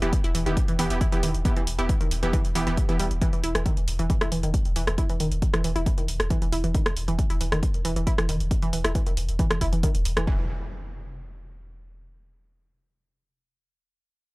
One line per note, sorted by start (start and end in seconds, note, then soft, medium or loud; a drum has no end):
0.02 0.13 E1 medium
0.02 0.08 E3 loud
0.02 0.12 B3 medium
0.02 0.12 E4 medium
0.02 0.12 G4 medium
0.02 closed hi-hat medium
0.13 kick loud
0.13 closed hi-hat loud
0.24 0.34 E1 medium
0.24 0.30 E4 loud
0.24 closed hi-hat medium
0.35 0.46 E1 loud
0.35 0.39 E3 medium
0.35 open hi-hat loud
0.46 0.57 E1 medium
0.46 0.52 D#3 medium
0.46 0.56 B3 medium
0.46 0.56 E4 medium
0.46 0.56 G4 loud
0.46 closed hi-hat medium
0.57 kick loud
0.57 closed hi-hat loud
0.68 0.72 E3 medium
0.68 closed hi-hat medium
0.79 0.90 E1 loud
0.79 0.86 E3 loud
0.79 0.89 B3 loud
0.79 0.89 E4 medium
0.79 0.89 G4 loud
0.79 open hi-hat loud
0.90 1.01 E1 medium
0.90 1.00 B3 loud
0.90 1.00 E4 medium
0.90 1.00 G4 loud
0.90 closed hi-hat medium
1.01 1.08 E4 loud
1.01 kick loud
1.01 closed hi-hat loud
1.12 1.22 E1 medium
1.12 1.16 E3 medium
1.12 1.29 B3 medium
1.12 1.29 E4 medium
1.12 1.29 G4 loud
1.12 closed hi-hat medium
1.23 1.34 E1 loud
1.23 1.30 D#3 medium
1.23 open hi-hat loud
1.34 1.45 E1 medium
1.34 closed hi-hat medium
1.45 1.49 E3 medium
1.45 1.56 B3 medium
1.45 1.56 E4 medium
1.45 1.56 G4 loud
1.45 kick loud
1.45 closed hi-hat medium
1.57 1.63 E3 loud
1.57 closed hi-hat medium
1.67 1.78 E1 loud
1.67 open hi-hat loud
1.79 1.89 E1 medium
1.79 1.88 B3 medium
1.79 1.88 E4 medium
1.79 1.85 E4 loud
1.79 1.89 G4 medium
1.79 closed hi-hat medium
1.89 1.93 E3 medium
1.89 kick loud
1.89 closed hi-hat medium
2.01 2.11 E1 medium
2.01 2.07 D#3 medium
2.01 closed hi-hat medium
2.11 2.22 E1 loud
2.11 open hi-hat loud
2.23 2.33 E1 medium
2.23 2.26 E3 medium
2.23 2.33 B3 medium
2.23 2.33 E4 medium
2.23 2.33 G4 loud
2.23 closed hi-hat medium
2.33 2.40 E3 loud
2.33 kick loud
2.33 closed hi-hat medium
2.45 closed hi-hat medium
2.55 2.66 E1 loud
2.55 2.62 E3 loud
2.55 2.65 B3 medium
2.55 2.65 E4 medium
2.55 2.65 G4 loud
2.55 open hi-hat loud
2.67 2.77 E1 medium
2.67 2.71 E3 loud
2.67 2.77 B3 loud
2.67 2.77 E4 medium
2.67 2.77 G4 loud
2.67 closed hi-hat medium
2.77 kick loud
2.77 closed hi-hat medium
2.89 2.99 E1 medium
2.89 2.98 E3 medium
2.89 3.05 B3 medium
2.89 3.05 E4 medium
2.89 3.05 G4 medium
2.89 closed hi-hat soft
2.99 3.10 E1 loud
2.99 3.06 G3 loud
2.99 open hi-hat loud
3.11 3.21 E1 medium
3.11 closed hi-hat medium
3.22 3.28 E3 loud
3.22 kick loud
3.22 closed hi-hat medium
3.33 3.37 E3 medium
3.33 closed hi-hat soft
3.44 3.54 E1 loud
3.44 3.50 E4 loud
3.44 open hi-hat loud
3.55 3.65 E1 medium
3.55 3.59 E3 medium
3.55 cross-stick medium
3.55 closed hi-hat soft
3.66 3.72 D#3 medium
3.66 kick loud
3.66 closed hi-hat medium
3.77 3.87 E1 medium
3.77 closed hi-hat soft
3.88 3.99 E1 loud
3.88 open hi-hat loud
3.99 4.10 E1 medium
3.99 4.05 E3 loud
3.99 closed hi-hat medium
4.10 4.14 E3 medium
4.10 kick loud
4.10 closed hi-hat medium
4.21 4.28 E4 loud
4.21 cross-stick medium
4.21 closed hi-hat soft
4.32 4.43 E1 loud
4.32 4.36 E3 medium
4.32 open hi-hat loud
4.43 4.54 E1 medium
4.43 4.50 D#3 medium
4.43 closed hi-hat soft
4.54 kick loud
4.54 closed hi-hat medium
4.65 4.75 E1 medium
4.65 closed hi-hat soft
4.76 4.87 E1 loud
4.76 4.83 E3 loud
4.76 open hi-hat loud
4.87 4.98 E1 medium
4.87 4.91 E3 medium
4.87 cross-stick medium
4.87 closed hi-hat medium
4.98 5.05 E4 loud
4.98 kick loud
4.98 closed hi-hat medium
5.09 5.13 E3 medium
5.09 closed hi-hat medium
5.20 5.31 E1 loud
5.20 5.27 D#3 medium
5.20 open hi-hat loud
5.32 5.42 E1 medium
5.32 closed hi-hat medium
5.42 kick loud
5.42 closed hi-hat medium
5.54 5.64 E1 medium
5.54 5.60 E3 loud
5.54 cross-stick medium
5.54 closed hi-hat soft
5.64 5.75 E1 loud
5.64 5.68 E3 medium
5.64 open hi-hat loud
5.76 5.86 E1 medium
5.76 5.82 E4 loud
5.76 closed hi-hat medium
5.86 5.90 E3 medium
5.86 kick loud
5.86 closed hi-hat medium
5.98 6.04 D#3 medium
5.98 closed hi-hat soft
6.08 6.19 E1 loud
6.08 open hi-hat loud
6.20 6.30 E1 medium
6.20 cross-stick medium
6.20 closed hi-hat medium
6.30 6.37 E3 loud
6.30 kick loud
6.30 closed hi-hat medium
6.42 6.52 E1 medium
6.42 6.46 E3 medium
6.42 closed hi-hat soft
6.52 6.63 E1 loud
6.52 6.59 E4 loud
6.52 open hi-hat loud
6.64 6.74 E1 medium
6.64 6.68 E3 medium
6.64 closed hi-hat medium
6.75 6.81 D#3 medium
6.75 kick loud
6.75 closed hi-hat medium
6.86 cross-stick medium
6.86 closed hi-hat medium
6.97 7.07 E1 loud
6.97 open hi-hat loud
7.08 7.18 E1 medium
7.08 7.14 E3 loud
7.08 closed hi-hat medium
7.19 7.23 E3 medium
7.19 kick loud
7.19 closed hi-hat medium
7.30 7.40 E1 medium
7.30 7.36 E4 loud
7.30 closed hi-hat medium
7.41 7.51 E1 loud
7.41 7.45 E3 medium
7.41 open hi-hat loud
7.52 7.63 E1 medium
7.52 7.58 D#3 medium
7.52 cross-stick medium
7.52 closed hi-hat medium
7.63 kick loud
7.63 closed hi-hat medium
7.74 closed hi-hat medium
7.85 7.96 E1 loud
7.85 7.92 E3 loud
7.85 open hi-hat loud
7.96 8.07 E1 medium
7.96 8.00 E3 medium
7.96 closed hi-hat medium
8.07 8.14 E4 loud
8.07 kick loud
8.07 closed hi-hat medium
8.18 8.28 E1 medium
8.18 8.22 E3 medium
8.18 cross-stick medium
8.18 closed hi-hat soft
8.29 8.40 E1 loud
8.29 8.36 D#3 medium
8.29 open hi-hat loud
8.40 8.51 E1 medium
8.40 closed hi-hat medium
8.51 kick loud
8.51 closed hi-hat medium
8.62 8.69 E3 loud
8.62 closed hi-hat medium
8.73 8.84 E1 loud
8.73 8.77 E3 medium
8.73 open hi-hat loud
8.84 8.95 E1 medium
8.84 8.91 E4 loud
8.84 cross-stick loud
8.84 closed hi-hat medium
8.95 8.99 E3 medium
8.95 kick loud
8.95 closed hi-hat medium
9.06 9.16 E1 medium
9.06 9.13 D#3 medium
9.06 closed hi-hat medium
9.17 9.28 E1 loud
9.17 open hi-hat loud
9.29 9.39 E1 medium
9.29 closed hi-hat medium
9.39 9.46 E3 loud
9.39 kick loud
9.39 closed hi-hat medium
9.51 9.54 E3 medium
9.51 cross-stick loud
9.51 closed hi-hat medium
9.61 9.72 E1 loud
9.61 9.68 E4 loud
9.61 kick medium
9.61 open hi-hat loud
9.73 9.83 E1 medium
9.73 9.76 E3 medium
9.73 closed hi-hat medium
9.83 9.90 D#3 medium
9.83 kick loud
9.83 closed hi-hat loud
9.95 10.05 E1 medium
9.95 closed hi-hat medium
10.05 10.16 E1 loud
10.05 open hi-hat loud
10.17 10.27 E1 medium
10.17 10.23 E3 loud
10.17 cross-stick loud
10.17 closed hi-hat medium
10.27 10.48 E1 loud
10.27 10.48 E3 medium
10.27 kick loud
10.27 impact medium